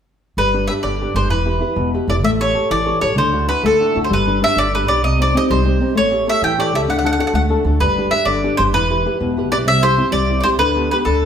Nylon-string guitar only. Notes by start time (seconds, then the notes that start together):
0.38 G3
0.54 D4 G4 B4
0.69 D4 G4 B4
0.84 D3
1.01 D4 G4 B4
1.16 D4 G4 B4
1.30 E3
1.46 E4 G4 B4
1.60 E4 G4 B4
1.76 B2
1.94 E4 G4 B4
2.09 E4 G4 B4
2.23 A3
2.40 G4 A4 C#5
2.55 G4 A4 C#5
2.70 E3
2.85 G4 A4 C#5
3.01 G4 A4 C#5
3.16 D3
3.33 D4 E4 F#4
3.48 D4 E4 F#4
3.63 A3
3.79 D4 E4 F#4
3.95 D4 E4 F#4
4.10 G3
4.27 D4 G4 B4
4.41 D4 G4 B4
4.56 D3
4.74 D4 G4 B4
4.89 D4 G4 B4
5.05 C3
5.20 C4 D#4 G4
5.34 C4 D#4 G4
5.50 G3
5.65 C4 D#4 G4
5.80 C4 D#4 G4
5.95 A3
6.12 G4 A4 C#5
6.27 G4 A4 C#5
6.42 E3
6.58 G4 A4 C#5
6.74 G4 A4 C#5
6.88 D3
7.03 D4 F#4 A4
7.19 D4 F#4 A4
7.34 A3
7.49 D4 F#4 A4
7.66 D4 F#4 A4
7.82 G3
7.98 D4 G4 B4
8.12 D4 G4 B4
8.28 D3
8.44 D4 G4 B4
8.58 D4 G4 B4
8.73 E3
8.90 E4 G4 B4
9.06 E4 G4 B4
9.20 B2
9.37 E4 G4 B4
9.52 E4 G4 B4
9.65 C3
9.82 C4 E4 G4
9.98 C4 E4 G4
10.12 G3
10.29 C4 E4 G4
10.44 C4 E4 G4
10.59 D3
10.76 B3 D4 G4
10.92 B3 D4 G4
11.07 D3